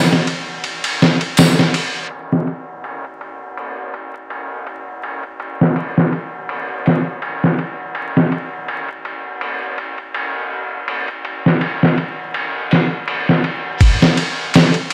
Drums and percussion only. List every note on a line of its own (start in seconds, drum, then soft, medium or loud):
0.13 snare soft
0.27 ride medium
0.64 ride medium
0.84 ride medium
1.02 snare soft
1.21 ride medium
1.37 snare loud
1.37 ride medium
1.37 tambourine medium
1.59 snare soft
1.74 ride medium
2.10 ride medium
2.33 snare soft
2.47 ride medium
2.84 ride medium
3.04 ride soft
3.21 ride medium
3.57 ride medium
3.94 ride medium
4.14 ride soft
4.30 ride medium
4.67 ride medium
5.03 ride medium
5.23 ride soft
5.40 ride medium
5.61 snare soft
5.76 ride medium
5.98 snare soft
6.13 ride medium
6.49 ride medium
6.86 snare soft
6.86 open hi-hat medium
7.22 ride medium
7.44 snare soft
7.59 ride medium
7.95 ride medium
8.17 snare soft
8.32 ride medium
8.68 ride medium
8.88 ride soft
9.05 ride medium
9.41 ride medium
9.78 ride medium
9.98 ride soft
10.14 ride medium
10.88 ride medium
11.08 ride soft
11.25 ride medium
11.46 snare soft
11.61 ride medium
11.83 snare soft
11.98 ride medium
12.34 ride medium
12.71 snare soft
12.71 open hi-hat medium
13.08 ride medium
13.29 snare soft
13.44 ride medium
13.81 kick loud
13.81 ride medium
14.02 snare medium
14.17 ride medium
14.54 snare loud
14.54 ride medium
14.74 ride soft
14.90 ride medium